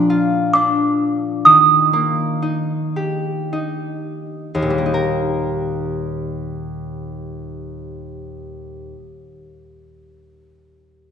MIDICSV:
0, 0, Header, 1, 3, 480
1, 0, Start_track
1, 0, Key_signature, -3, "major"
1, 0, Tempo, 890208
1, 778, Time_signature, 3, 2, 24, 8
1, 778, Tempo, 972447
1, 1258, Tempo, 1098901
1, 1738, Tempo, 1244813
1, 3178, Tempo, 1282051
1, 4625, End_track
2, 0, Start_track
2, 0, Title_t, "Music box"
2, 0, Program_c, 0, 10
2, 0, Note_on_c, 0, 84, 81
2, 288, Note_on_c, 0, 86, 83
2, 306, Note_off_c, 0, 84, 0
2, 755, Note_off_c, 0, 86, 0
2, 782, Note_on_c, 0, 87, 90
2, 1722, Note_off_c, 0, 87, 0
2, 4625, End_track
3, 0, Start_track
3, 0, Title_t, "Harp"
3, 0, Program_c, 1, 46
3, 0, Note_on_c, 1, 46, 66
3, 0, Note_on_c, 1, 53, 54
3, 0, Note_on_c, 1, 62, 52
3, 53, Note_on_c, 1, 65, 57
3, 293, Note_off_c, 1, 62, 0
3, 295, Note_on_c, 1, 62, 52
3, 783, Note_on_c, 1, 51, 58
3, 802, Note_off_c, 1, 46, 0
3, 802, Note_off_c, 1, 53, 0
3, 813, Note_off_c, 1, 62, 0
3, 1019, Note_on_c, 1, 58, 51
3, 1262, Note_on_c, 1, 63, 46
3, 1348, Note_off_c, 1, 65, 0
3, 1497, Note_on_c, 1, 67, 50
3, 1741, Note_off_c, 1, 63, 0
3, 1743, Note_on_c, 1, 63, 51
3, 2136, Note_on_c, 1, 39, 51
3, 2166, Note_on_c, 1, 46, 44
3, 2196, Note_on_c, 1, 55, 43
3, 2225, Note_off_c, 1, 58, 0
3, 2226, Note_on_c, 1, 58, 45
3, 2230, Note_off_c, 1, 51, 0
3, 2255, Note_off_c, 1, 63, 0
3, 2256, Note_on_c, 1, 63, 42
3, 2287, Note_on_c, 1, 70, 51
3, 2433, Note_off_c, 1, 67, 0
3, 3803, Note_off_c, 1, 39, 0
3, 3832, Note_off_c, 1, 46, 0
3, 3862, Note_off_c, 1, 55, 0
3, 3891, Note_off_c, 1, 58, 0
3, 3920, Note_off_c, 1, 63, 0
3, 3950, Note_off_c, 1, 70, 0
3, 4625, End_track
0, 0, End_of_file